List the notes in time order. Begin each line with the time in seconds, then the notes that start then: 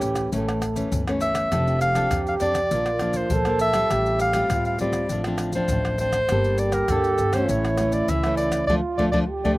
Already playing: E3 A3 C#4 G4
0.01 A1, pandeiro, maracas
0.15 pandeiro, tamborim, maracas, surdo
0.32 A1 A2 E3 A3 C#4 A4, pandeiro, maracas, surdo
0.49 pandeiro, tamborim, maracas
0.62 pandeiro, tamborim, maracas, surdo
0.76 E3 A3 C#4, pandeiro, maracas, surdo
0.92 G1 E3, pandeiro, maracas, surdo
1.08 E3 A3 C#4, pandeiro, tamborim, maracas
1.21 E5, pandeiro, maracas
1.35 pandeiro, tamborim, maracas, surdo
1.52 F1 F3 C4 D4 G4 A4, pandeiro, tamborim, maracas, surdo
1.67 pandeiro, maracas
1.81 F5, pandeiro, maracas
1.95 C4 D4 A4, pandeiro, tamborim, maracas, surdo
2.11 F2 C3, pandeiro, tamborim, maracas, surdo
2.27 F5, pandeiro, maracas
2.40 F2 C4 D4 A4 D5, pandeiro, maracas
2.55 pandeiro, tamborim, maracas, surdo
2.71 A#1 A#2 F3 A#3 D4 F4, pandeiro, maracas, surdo
2.86 pandeiro, tamborim, maracas
2.99 F3 A#3 D4, pandeiro, tamborim, surdo
3.13 C5, pandeiro, maracas, surdo
3.30 A#1 F3 A4, pandeiro, maracas, surdo
3.45 F3 A#3 D4, pandeiro, tamborim, maracas
3.59 E5, pandeiro, maracas
3.73 G3 C4 F4, pandeiro, tamborim, maracas, surdo
3.90 A1 A2 G4, pandeiro, tamborim, maracas, surdo
4.06 pandeiro, maracas
4.19 F5, pandeiro, maracas
4.33 G3 C4 F4, pandeiro, tamborim, maracas, surdo
4.50 A2 F4, pandeiro, tamborim, maracas, surdo
4.65 F5, pandeiro, maracas
4.79 A1 G3 C4 F4 D5, pandeiro, maracas
4.93 pandeiro, tamborim, maracas, surdo
5.09 A1 A2 F3 C4 D4 F4, pandeiro, maracas, surdo
5.24 F3 C4 D4, pandeiro, tamborim, maracas
5.38 pandeiro, tamborim, maracas
5.53 F3 C4 D4 C5, pandeiro, maracas, surdo
5.68 A1 A2, pandeiro, maracas, surdo
5.85 pandeiro, tamborim, maracas
5.98 F3 C4 D4 C5, pandeiro, maracas
6.13 pandeiro, tamborim, maracas, surdo
6.29 G1 G3 A#3 D4 G4 A4, pandeiro, tamborim, maracas, surdo
6.44 pandeiro, maracas
6.58 D5, pandeiro, maracas
6.72 A#4, pandeiro, tamborim, maracas, surdo
6.88 G2 D3 A#3 D4 A4, pandeiro, tamborim, maracas, surdo
7.04 pandeiro, maracas
7.18 G1, pandeiro, maracas
7.33 E3 A3 C#4 C5, pandeiro, tamborim, maracas, surdo
7.49 A1 A2 E4 C#5, pandeiro, maracas, surdo
7.65 pandeiro, tamborim, maracas
7.78 E3 A3 C#4, pandeiro, tamborim, maracas, surdo
7.92 D5, pandeiro, maracas, surdo
8.08 C#2 E3 E5, pandeiro, maracas, surdo
8.24 E3 A3 C#4, pandeiro, tamborim, maracas
8.37 D5, pandeiro
8.52 pandeiro, tamborim, maracas, surdo
8.67 D2 F3 A3 D4 F4 D5, surdo
8.97 D2 F3 A3 D4 D5, surdo
9.12 D2 F3 A3 D4 D5, surdo
9.29 G4
9.44 D2 F3 A3 D4 D5, surdo